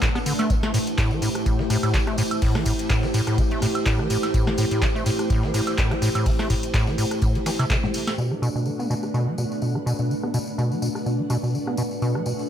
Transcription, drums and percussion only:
0.02 kick, snare, clap, closed hi-hat, tambourine
0.15 cross-stick, tambourine
0.26 open hi-hat, ride, tambourine
0.39 snare, closed hi-hat, tambourine, high woodblock
0.50 kick, closed hi-hat, tambourine
0.63 cross-stick, snare
0.74 open hi-hat, ride, tambourine
0.87 closed hi-hat, tambourine
0.98 kick, cross-stick, snare, clap, closed hi-hat, tambourine
1.11 tambourine
1.22 open hi-hat, ride, tambourine
1.35 cross-stick, closed hi-hat, tambourine
1.46 kick, closed hi-hat, tambourine
1.59 snare
1.70 cross-stick, open hi-hat, ride, tambourine
1.83 snare, closed hi-hat, tambourine, high woodblock
1.94 kick, snare, clap, closed hi-hat, tambourine
2.07 cross-stick, closed hi-hat
2.18 open hi-hat, ride, tambourine
2.31 closed hi-hat, tambourine, high woodblock
2.42 kick, closed hi-hat, open hi-hat, tambourine
2.55 cross-stick, snare
2.66 kick, open hi-hat, ride, tambourine
2.79 closed hi-hat, tambourine
2.90 kick, cross-stick, snare, clap, closed hi-hat, tambourine
3.03 snare, tambourine
3.14 open hi-hat, ride, tambourine
3.27 cross-stick, closed hi-hat, tambourine
3.38 kick, closed hi-hat, tambourine
3.51 closed hi-hat
3.62 cross-stick, open hi-hat, ride, tambourine
3.75 closed hi-hat, tambourine, high woodblock
3.86 kick, snare, clap, closed hi-hat, tambourine
3.99 cross-stick
4.10 open hi-hat, ride, tambourine
4.23 snare, closed hi-hat, tambourine, high woodblock
4.34 kick, closed hi-hat, tambourine
4.47 cross-stick, snare
4.58 open hi-hat, ride, tambourine
4.71 closed hi-hat, tambourine
4.82 kick, cross-stick, snare, clap, closed hi-hat, tambourine
4.96 tambourine
5.06 open hi-hat, ride, tambourine
5.19 cross-stick, closed hi-hat, tambourine
5.30 kick, closed hi-hat, tambourine
5.43 snare
5.54 cross-stick, open hi-hat, ride, tambourine
5.67 snare, closed hi-hat, tambourine, high woodblock
5.78 kick, snare, clap, closed hi-hat, tambourine
5.91 cross-stick, closed hi-hat
6.02 open hi-hat, ride, tambourine
6.15 closed hi-hat, tambourine, high woodblock
6.26 kick, closed hi-hat, open hi-hat, tambourine
6.39 cross-stick, snare, tambourine
6.50 kick, open hi-hat, ride, tambourine
6.63 closed hi-hat, tambourine
6.74 kick, cross-stick, snare, clap, closed hi-hat, tambourine
6.87 snare, tambourine
6.98 open hi-hat, ride, tambourine
7.11 cross-stick, closed hi-hat, tambourine
7.22 kick, closed hi-hat, tambourine
7.35 closed hi-hat
7.46 cross-stick, snare, open hi-hat, ride, tambourine
7.59 snare, closed hi-hat, tambourine, high woodblock
7.70 kick, snare, clap, closed hi-hat, tambourine
7.83 snare, high tom
7.94 open hi-hat, ride, tambourine
8.07 snare, closed hi-hat, tambourine, high woodblock
8.18 tambourine
8.31 cross-stick
8.43 tambourine
8.56 tambourine
8.66 cross-stick, tambourine
8.80 tambourine
8.91 tambourine
9.03 cross-stick, tambourine
9.14 tambourine
9.38 cross-stick, tambourine
9.51 closed hi-hat, tambourine
9.62 tambourine
9.75 cross-stick
9.87 tambourine
9.99 closed hi-hat, tambourine
10.10 closed hi-hat, tambourine
10.23 cross-stick
10.34 tambourine
10.47 closed hi-hat, tambourine
10.58 cross-stick, tambourine
10.72 tambourine
10.82 tambourine
10.95 cross-stick, closed hi-hat, tambourine
11.06 closed hi-hat, tambourine
11.30 cross-stick, tambourine
11.43 closed hi-hat, tambourine
11.54 closed hi-hat, tambourine
11.67 cross-stick
11.77 tambourine
11.91 closed hi-hat, tambourine
12.02 closed hi-hat, tambourine
12.15 cross-stick
12.26 tambourine
12.39 closed hi-hat, tambourine

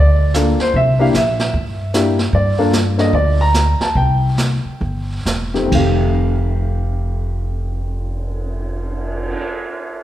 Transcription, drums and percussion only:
0.34 snare, hi-hat pedal
0.60 snare
0.74 brush sweep, kick
1.14 snare, hi-hat pedal
1.39 snare
1.54 brush sweep, kick
1.94 snare, hi-hat pedal
2.19 snare
2.33 brush sweep, kick
2.73 snare, hi-hat pedal
2.99 snare
3.13 brush sweep, kick
3.54 snare, hi-hat pedal
3.81 snare
3.95 brush sweep, kick
4.38 snare, hi-hat pedal
4.81 brush sweep, kick
5.26 snare, hi-hat pedal
5.55 snare
5.72 kick, crash
6.02 cymbal swell

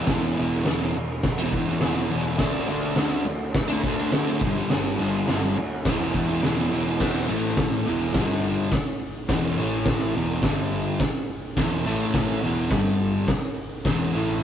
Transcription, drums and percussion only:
0.07 kick, snare, crash
0.65 snare, crash
1.23 kick, snare, crash
1.53 kick
1.81 snare, crash
2.38 kick, snare, crash
2.96 snare, crash
3.54 kick, snare, crash
3.84 kick
4.12 snare, crash
4.41 kick
4.70 snare, crash
5.28 snare, crash
5.85 kick, snare, crash
6.14 kick
6.43 snare, crash
7.00 kick, snare, crash
7.57 kick, snare, open hi-hat
8.14 kick, snare, open hi-hat
8.72 kick, snare, open hi-hat
9.29 kick, snare, open hi-hat
9.85 kick, snare, open hi-hat
10.43 kick, snare, open hi-hat
11.00 kick, snare, open hi-hat
11.57 kick, snare, open hi-hat
12.14 kick, snare, open hi-hat
12.71 kick, snare, open hi-hat
13.28 kick, snare, open hi-hat
13.85 kick, snare, open hi-hat

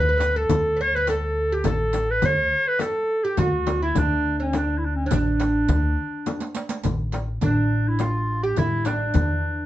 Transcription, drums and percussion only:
0.20 riq, darbuka tek, frame drum
0.49 riq, frame drum, darbuka dum
1.07 riq, darbuka tek, frame drum
1.64 riq, frame drum, darbuka dum
1.93 riq, darbuka tek, frame drum
2.22 riq, frame drum, darbuka dum
2.79 riq, darbuka tek, frame drum
3.37 riq, frame drum, darbuka dum
3.67 riq, darbuka tek, frame drum
3.95 riq, frame drum, darbuka dum
4.53 riq, darbuka tek, frame drum
5.11 riq, frame drum, darbuka dum
5.40 riq, darbuka tek, frame drum
5.68 riq, darbuka dum, frame drum
6.26 riq, darbuka tek, frame drum
6.40 riq, darbuka ka
6.55 riq, darbuka tek
6.69 riq, darbuka ka
6.83 riq, frame drum, darbuka dum
7.12 riq, darbuka tek, frame drum
7.41 riq, frame drum, darbuka dum
7.99 riq, darbuka tek, frame drum
8.56 riq, frame drum, darbuka dum
8.85 riq, darbuka tek, frame drum
9.14 riq, frame drum, darbuka dum

